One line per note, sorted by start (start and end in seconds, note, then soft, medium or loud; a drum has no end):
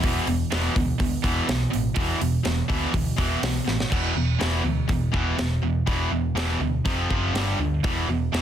0.03 0.19 E1 medium
0.03 0.26 E2 medium
0.03 0.27 B2 medium
0.03 0.27 E3 medium
0.03 kick loud
0.03 open hi-hat medium
0.27 0.43 E1 medium
0.27 0.49 E2 medium
0.27 0.49 B2 medium
0.27 open hi-hat medium
0.52 0.67 E1 medium
0.52 0.74 E2 medium
0.52 0.74 B2 loud
0.52 0.75 E3 medium
0.52 snare loud
0.52 open hi-hat medium
0.76 0.91 D2 medium
0.76 0.97 E2 medium
0.76 0.98 B2 medium
0.76 kick medium
0.76 open hi-hat medium
1.00 1.15 D2 medium
1.00 1.21 E2 medium
1.00 1.22 B2 medium
1.00 kick loud
1.00 open hi-hat medium
1.24 1.39 E1 medium
1.24 1.47 E2 medium
1.24 1.47 B2 medium
1.24 1.47 E3 loud
1.24 kick medium
1.24 open hi-hat medium
1.48 1.64 B1 medium
1.48 1.70 E2 medium
1.48 1.70 B2 medium
1.48 snare loud
1.48 open hi-hat medium
1.71 1.89 A1 medium
1.71 1.93 E2 medium
1.71 1.93 B2 medium
1.71 open hi-hat soft
1.96 2.12 E1 medium
1.96 2.19 E2 medium
1.96 2.20 B2 loud
1.96 2.20 E3 medium
1.96 kick loud
1.96 open hi-hat medium
2.20 2.36 E1 medium
2.20 2.42 E2 medium
2.20 2.43 B2 medium
2.20 open hi-hat medium
2.43 2.61 E1 medium
2.43 2.66 E2 medium
2.43 2.66 B2 medium
2.43 snare loud
2.43 open hi-hat medium
2.68 2.85 D2 medium
2.68 2.92 E2 medium
2.68 2.92 B2 loud
2.68 2.92 E3 loud
2.68 kick medium
2.68 open hi-hat medium
2.93 3.10 D2 medium
2.93 3.15 E2 medium
2.93 3.15 B2 medium
2.93 kick loud
2.93 open hi-hat medium
3.17 3.34 E1 medium
3.17 3.40 E2 medium
3.17 3.40 B2 medium
3.17 3.41 E3 medium
3.17 kick medium
3.17 open hi-hat medium
3.42 3.58 B1 medium
3.42 3.63 E2 medium
3.42 3.64 B2 medium
3.42 snare loud
3.42 open hi-hat medium
3.64 3.83 A1 medium
3.64 3.88 E2 medium
3.64 3.88 B2 medium
3.64 snare medium
3.80 snare medium
3.90 4.11 E1 medium
3.90 4.13 E2 medium
3.90 4.14 B2 medium
3.90 4.14 E3 medium
3.90 kick loud
3.90 crash medium
4.15 4.35 E1 medium
4.15 4.37 E2 medium
4.15 4.37 B2 medium
4.39 4.60 E1 medium
4.39 4.62 E2 medium
4.39 4.62 B2 medium
4.39 4.63 E3 medium
4.39 snare loud
4.39 open hi-hat soft
4.64 4.83 D2 medium
4.64 4.86 E2 medium
4.64 4.86 B2 medium
4.88 5.08 E1 medium
4.88 5.10 E2 medium
4.88 5.10 B2 medium
4.88 kick loud
4.88 open hi-hat soft
5.12 5.33 E1 medium
5.12 5.36 E2 medium
5.12 5.36 B2 medium
5.12 5.36 E3 medium
5.12 kick medium
5.37 5.58 E1 medium
5.37 5.60 E2 medium
5.37 5.60 B2 medium
5.37 snare loud
5.37 open hi-hat soft
5.62 5.81 E1 medium
5.62 5.84 E2 medium
5.62 5.85 B2 medium
5.86 6.07 E1 medium
5.86 6.10 E2 medium
5.86 6.10 B2 medium
5.86 6.10 E3 medium
5.86 kick medium
5.86 open hi-hat soft
6.10 6.30 E1 medium
6.10 6.34 E2 medium
6.10 6.34 B2 medium
6.35 6.54 E1 medium
6.35 6.58 E2 medium
6.35 6.59 B2 medium
6.35 6.59 E3 medium
6.35 snare loud
6.35 open hi-hat soft
6.60 6.79 D2 medium
6.60 6.82 E2 medium
6.60 6.83 B2 medium
6.85 7.05 F1 medium
6.85 7.08 F2 medium
6.85 7.08 C3 medium
6.85 7.09 F3 loud
6.85 kick loud
6.85 open hi-hat soft
7.09 7.30 F#1 medium
7.09 7.33 F2 medium
7.09 7.33 C3 medium
7.09 7.33 F3 medium
7.09 kick medium
7.34 7.53 G1 medium
7.34 7.58 G2 medium
7.34 7.58 D3 medium
7.34 7.58 G3 medium
7.34 snare loud
7.34 open hi-hat soft
7.59 7.78 D2 medium
7.59 7.82 G2 medium
7.59 7.82 D3 medium
7.84 8.03 E1 medium
7.84 8.07 E2 medium
7.84 8.07 B2 medium
7.84 8.07 E3 medium
7.84 kick loud
7.84 open hi-hat soft
8.08 8.27 E1 medium
8.08 8.31 E2 medium
8.08 8.31 B2 medium
8.33 8.42 E1 medium
8.33 8.42 E2 medium
8.33 8.42 B2 medium
8.33 8.42 E3 medium
8.33 snare loud
8.33 open hi-hat soft